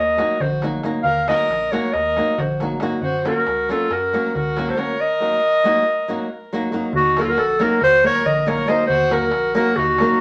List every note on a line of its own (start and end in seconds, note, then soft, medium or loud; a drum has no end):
0.00 0.23 D#2 loud
0.00 0.43 A#4 medium
0.00 0.43 D#5 loud
0.17 0.36 F#3 medium
0.17 0.36 A#3 medium
0.17 0.37 D#4 medium
0.17 0.37 F#4 medium
0.17 darbuka tek medium
0.40 0.79 A#1 loud
0.40 0.63 F#4 medium
0.40 0.64 C5 medium
0.40 darbuka dum loud
0.62 0.80 F#3 medium
0.62 0.80 A#3 medium
0.62 0.80 D#4 medium
0.62 0.81 F#4 medium
0.62 darbuka tek medium
0.83 1.01 F#3 medium
0.83 1.01 A#3 medium
0.83 1.01 D#4 medium
0.83 1.02 F#4 medium
0.83 darbuka tek medium
1.03 1.31 D#2 medium
1.03 1.26 A#4 medium
1.03 1.25 F5 medium
1.03 darbuka dum medium
1.16 darbuka tek soft
1.27 1.45 F#3 medium
1.27 1.46 A#3 soft
1.27 1.46 D#4 medium
1.27 1.46 F#4 medium
1.27 1.74 A#4 medium
1.27 1.73 D#5 medium
1.27 darbuka tek medium
1.49 1.76 A#1 medium
1.49 darbuka tek medium
1.72 1.90 F#3 medium
1.72 1.90 A#3 medium
1.72 1.90 D#4 medium
1.72 1.90 F#4 medium
1.72 1.94 A#4 medium
1.72 1.95 C#5 medium
1.72 darbuka tek medium
1.93 2.21 D#2 loud
1.93 2.40 A#4 medium
1.93 2.42 D#5 loud
1.93 darbuka tek medium
2.16 2.34 F#3 medium
2.16 2.34 A#3 medium
2.16 2.35 D#4 medium
2.16 2.35 F#4 medium
2.16 darbuka tek medium
2.38 2.77 A#1 loud
2.38 2.60 F#4 medium
2.38 2.61 C5 medium
2.38 darbuka dum loud
2.49 darbuka tek soft
2.60 2.78 F#3 medium
2.60 2.78 A#3 medium
2.60 2.79 D#4 medium
2.60 2.79 F#4 medium
2.60 darbuka tek medium
2.80 2.98 F#3 medium
2.80 2.98 A#3 medium
2.80 2.99 D#4 medium
2.80 2.99 F#4 medium
2.80 darbuka tek medium
3.01 3.29 F#2 loud
3.01 3.24 F#4 medium
3.01 3.25 C5 medium
3.01 darbuka dum medium
3.14 darbuka tek soft
3.25 3.42 F#3 medium
3.25 3.43 A#3 medium
3.25 3.43 C#4 medium
3.25 3.73 F#4 medium
3.25 3.43 F#4 medium
3.25 3.72 A#4 medium
3.25 darbuka tek medium
3.46 3.73 C#2 medium
3.46 darbuka tek medium
3.69 3.87 F#3 medium
3.69 3.87 A#3 medium
3.69 3.87 C#4 medium
3.69 3.94 F4 medium
3.69 3.88 F#4 medium
3.69 3.93 A4 medium
3.69 darbuka tek medium
3.90 4.17 F#2 loud
3.90 4.35 F#4 medium
3.90 4.35 A#4 loud
3.90 darbuka tek medium
4.13 4.31 F#3 medium
4.13 4.31 A#3 medium
4.13 4.31 C#4 medium
4.13 4.32 F#4 medium
4.13 darbuka tek medium
4.34 4.73 C#2 loud
4.34 4.70 F#4 medium
4.34 4.72 A#4 medium
4.34 darbuka dum medium
4.57 4.74 F#3 medium
4.57 4.75 A#3 medium
4.57 4.75 C#4 medium
4.57 4.75 F#4 medium
4.57 darbuka tek medium
4.69 4.79 A4 medium
4.69 4.81 C5 medium
4.76 4.94 F#3 medium
4.76 4.94 A#3 soft
4.76 4.95 C#4 medium
4.76 4.95 F#4 medium
4.76 4.98 A#4 medium
4.76 5.02 C#5 medium
4.76 darbuka tek medium
4.98 6.53 A#4 medium
4.98 6.55 D#5 loud
5.20 5.38 F#3 medium
5.20 5.39 A#3 medium
5.20 5.39 D#4 soft
5.20 5.39 F#4 medium
5.64 5.82 F#3 medium
5.64 5.83 A#3 medium
5.64 5.83 D#4 medium
5.64 5.83 F#4 loud
6.08 6.27 F#3 medium
6.08 6.27 A#3 medium
6.08 6.27 D#4 medium
6.08 6.27 F#4 medium
6.53 6.70 F#3 medium
6.53 6.70 A#3 medium
6.53 6.71 D#4 medium
6.53 6.71 F#4 medium
6.72 6.90 F#3 medium
6.72 6.90 A#3 medium
6.72 6.91 D#4 medium
6.72 6.91 F#4 medium
6.93 7.40 D#2 medium
6.93 7.20 F#4 loud
6.93 darbuka dum medium
6.98 7.21 D#4 medium
7.17 7.35 F#3 medium
7.17 7.35 A#3 medium
7.17 7.35 D#4 medium
7.17 7.35 F#4 medium
7.17 7.26 F#4 medium
7.17 7.23 A#4 medium
7.17 7.36 A#4 medium
7.17 darbuka tek medium
7.21 7.33 F4 medium
7.21 7.30 A4 medium
7.28 7.40 F#4 medium
7.28 7.41 A#4 loud
7.38 7.65 A#1 medium
7.38 7.61 F#4 medium
7.38 7.64 A4 loud
7.38 darbuka tek medium
7.49 darbuka tek soft
7.59 7.78 F#3 medium
7.59 7.78 A#3 medium
7.59 7.78 D#4 medium
7.59 7.78 F#4 medium
7.59 7.82 F#4 medium
7.59 7.79 A#4 medium
7.59 7.83 A#4 medium
7.59 darbuka tek medium
7.81 8.08 D#2 loud
7.81 8.05 F#4 medium
7.81 8.05 C5 loud
7.81 darbuka tek medium
7.81 darbuka dum medium
8.03 8.22 F#3 medium
8.03 8.22 A#3 medium
8.03 8.22 D#4 medium
8.03 8.22 F#4 medium
8.03 8.22 A#4 medium
8.03 8.27 A#4 loud
8.03 8.28 C#5 loud
8.15 darbuka tek soft
8.25 8.64 A#1 loud
8.25 8.48 A#4 medium
8.25 8.50 D#5 medium
8.25 darbuka dum medium
8.46 8.65 F#3 medium
8.46 8.64 A#3 medium
8.46 8.65 D#4 medium
8.46 8.65 F#4 medium
8.46 8.71 A#4 medium
8.46 8.65 A#4 medium
8.46 8.70 C#5 medium
8.46 darbuka tek medium
8.67 8.85 F#3 medium
8.67 8.85 A#3 medium
8.67 8.86 D#4 medium
8.67 8.86 F#4 medium
8.67 8.86 A#4 medium
8.67 8.88 C5 medium
8.67 8.87 D#5 medium
8.67 darbuka tek medium
8.87 9.34 D#2 loud
8.87 9.13 F#4 loud
8.87 9.14 C5 medium
8.87 darbuka dum medium
9.00 darbuka tek soft
9.10 9.29 F#3 medium
9.10 9.29 A#3 medium
9.10 9.29 D#4 medium
9.10 9.29 F#4 medium
9.10 9.57 F#4 medium
9.10 9.29 A#4 medium
9.10 9.55 A#4 medium
9.10 darbuka tek medium
9.31 9.59 A#1 medium
9.31 darbuka tek medium
9.44 darbuka tek soft
9.54 9.73 F#3 medium
9.54 9.73 A#3 medium
9.54 9.73 D#4 medium
9.54 9.74 F#4 medium
9.54 9.80 F#4 medium
9.54 9.78 A#4 medium
9.54 9.74 A#4 loud
9.54 darbuka tek medium
9.76 10.04 D#2 loud
9.76 10.21 D#4 medium
9.76 10.21 F#4 loud
9.76 darbuka tek medium
9.76 darbuka dum medium
9.87 darbuka tek soft
9.98 10.18 F#3 medium
9.98 10.18 A#3 medium
9.98 10.18 D#4 medium
9.98 10.18 F#4 medium
9.98 10.19 A#4 medium
9.98 darbuka tek medium
10.10 darbuka tek soft